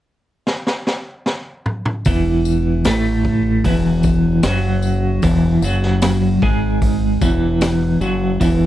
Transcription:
0.47 snare medium
0.67 snare medium
0.87 snare medium
1.26 snare medium
1.66 mid tom medium
1.85 mid tom loud
2.05 2.81 E1 medium
2.05 2.84 E2 medium
2.05 2.85 E3 medium
2.05 kick loud
2.05 open hi-hat soft
2.05 tambourine medium
2.45 tambourine medium
2.85 3.60 A1 loud
2.85 3.64 A2 medium
2.85 3.64 A3 medium
2.85 snare loud
2.85 open hi-hat medium
2.85 tambourine medium
3.25 kick medium
3.64 4.40 E1 medium
3.64 4.43 E2 medium
3.64 4.43 E3 medium
3.64 kick medium
3.64 open hi-hat medium
4.03 kick medium
4.03 tambourine medium
4.43 5.19 F#1 medium
4.43 5.22 F#2 medium
4.43 5.23 F#3 loud
4.43 snare loud
4.43 open hi-hat medium
4.43 tambourine medium
4.82 tambourine medium
5.22 5.60 E1 loud
5.22 5.62 E2 medium
5.22 5.62 E3 loud
5.22 kick loud
5.22 open hi-hat medium
5.22 tambourine medium
5.62 6.38 F#1 medium
5.62 6.41 F#2 medium
5.62 6.42 F#3 medium
5.62 tambourine medium
5.82 snare soft
6.02 snare loud
6.02 open hi-hat medium
6.02 tambourine medium
6.42 7.18 G#1 medium
6.42 7.20 G#2 medium
6.42 7.21 G#3 loud
6.42 kick medium
6.82 kick medium
6.82 open hi-hat medium
7.21 7.97 E1 loud
7.21 8.00 E2 medium
7.21 8.00 E3 medium
7.21 kick medium
7.21 tambourine medium
7.61 snare loud
7.61 open hi-hat soft
7.61 tambourine medium
8.01 8.38 F#1 loud
8.01 8.39 F#2 medium
8.01 8.39 F#3 medium
8.01 tambourine medium
8.40 8.66 E1 medium
8.40 8.66 E2 medium
8.40 8.66 E3 medium
8.40 kick medium
8.40 open hi-hat soft
8.40 tambourine medium

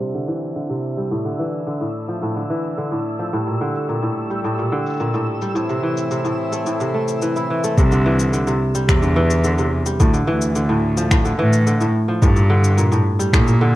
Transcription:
0.00 0.19 C3 medium
0.00 0.19 G3 medium
0.00 0.33 A3 medium
0.00 0.55 C4 medium
0.00 1.09 C4 medium
0.00 3.29 D4 medium
0.00 3.29 E4 medium
0.00 7.79 E6 medium
0.14 0.54 D3 medium
0.28 0.61 E3 medium
0.42 shaker medium
0.55 0.75 D3 medium
0.55 shaker soft
0.70 1.16 C3 medium
0.97 1.16 G3 medium
0.97 shaker soft
1.07 shaker soft
1.11 1.30 A2 medium
1.11 shaker soft
1.16 shaker soft
1.25 1.65 D3 medium
1.39 1.72 E3 medium
1.53 shaker medium
1.67 1.86 D3 medium
1.67 shaker soft
1.80 2.21 A2 medium
1.80 shaker soft
2.08 2.41 F3 medium
2.08 shaker medium
2.22 2.41 A2 medium
2.22 shaker soft
2.36 2.76 D3 medium
2.36 shaker soft
2.50 2.83 E3 medium
2.64 shaker medium
2.78 2.97 D3 medium
2.78 shaker soft
2.92 3.32 A2 medium
2.92 shaker soft
3.19 3.38 F3 medium
3.19 shaker medium
3.33 3.52 A2 medium
3.33 5.53 G3 medium
3.33 5.53 A3 medium
3.33 shaker soft
3.47 3.66 A#2 medium
3.47 shaker soft
3.61 3.94 D3 medium
3.75 shaker medium
3.89 4.08 A#2 medium
3.89 shaker soft
4.02 4.43 A2 medium
4.02 shaker soft
4.30 4.77 G3 medium
4.30 shaker medium
4.44 4.63 A2 medium
4.44 shaker medium
4.58 4.77 A#2 medium
4.58 shaker soft
4.72 5.05 D3 medium
4.86 shaker medium
4.90 shaker soft
4.93 shaker soft
4.96 shaker soft
5.00 5.19 A#2 medium
5.00 shaker soft
5.14 5.54 A2 medium
5.14 shaker soft
5.42 5.61 G3 medium
5.42 shaker medium
5.55 7.75 A2 medium
5.55 5.75 A2 medium
5.55 7.75 E3 medium
5.55 7.75 C4 medium
5.55 shaker soft
5.69 6.10 C3 medium
5.69 shaker soft
5.83 6.16 E3 medium
5.97 shaker medium
6.11 6.30 C3 medium
6.11 shaker medium
6.25 6.65 A2 medium
6.25 shaker soft
6.52 6.94 A3 medium
6.52 shaker medium
6.66 6.86 A2 medium
6.66 shaker soft
6.80 7.77 C3 medium
6.80 shaker soft
6.94 7.63 A3 medium
7.08 shaker medium
7.22 7.49 E3 medium
7.22 shaker soft
7.36 8.93 E4 medium
7.36 shaker soft
7.50 7.83 E3 medium
7.64 9.64 A3 medium
7.64 shaker medium
7.78 8.54 C2 loud
7.78 7.97 C3 medium
7.78 kick loud
7.78 shaker medium
7.92 8.32 D3 medium
7.92 shaker soft
8.06 8.38 E3 medium
8.19 shaker medium
8.33 8.52 D3 medium
8.33 shaker medium
8.47 8.87 C3 medium
8.47 shaker soft
8.75 9.08 G3 medium
8.75 shaker medium
8.89 9.79 E2 loud
8.89 9.08 C3 medium
8.89 finger snap medium
8.89 kick loud
8.89 shaker medium
9.02 9.43 D3 medium
9.02 shaker soft
9.16 9.50 E3 loud
9.30 shaker medium
9.44 9.63 D3 medium
9.44 shaker medium
9.58 10.05 C3 medium
9.58 shaker soft
9.86 10.05 G3 medium
9.86 shaker medium
10.00 10.18 D2 loud
10.00 10.19 A2 medium
10.00 kick loud
10.00 shaker medium
10.13 10.54 D3 medium
10.13 shaker soft
10.27 11.31 D2 medium
10.27 10.61 E3 loud
10.42 shaker medium
10.55 10.75 D3 medium
10.55 shaker medium
10.69 11.10 A2 medium
10.97 11.30 F3 medium
10.97 shaker medium
11.11 11.30 A2 medium
11.11 finger snap medium
11.11 kick loud
11.11 shaker medium
11.25 11.66 D3 medium
11.25 shaker soft
11.39 11.87 A2 loud
11.39 11.72 E3 loud
11.53 shaker medium
11.67 11.86 D3 medium
11.67 shaker medium
11.81 12.21 A2 medium
11.81 shaker soft
12.08 12.27 F3 medium
12.22 12.98 G2 loud
12.22 12.41 A2 medium
12.22 kick loud
12.22 shaker medium
12.36 12.55 A#2 medium
12.36 shaker soft
12.50 12.83 D3 loud
12.64 shaker medium
12.77 12.97 A#2 medium
12.77 shaker medium
12.92 13.32 A2 medium
12.92 shaker soft
13.19 13.66 G3 medium
13.19 shaker medium
13.33 13.52 A2 medium
13.33 13.76 A#2 loud
13.33 finger snap medium
13.33 kick loud
13.33 shaker medium
13.47 13.66 A#2 medium
13.47 shaker soft
13.61 13.76 D3 loud

